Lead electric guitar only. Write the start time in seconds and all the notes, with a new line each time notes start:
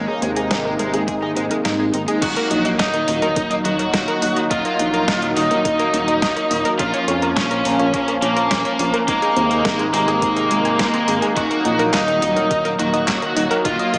2.22 F#4
2.79 D#4
3.65 F#4
4.51 F4
5.36 D#4
6.79 F4
7.36 C#4
8.22 A#3
9.08 A#3
9.93 A#3
11.37 F#4
11.94 D#4
12.79 F#4
13.65 F4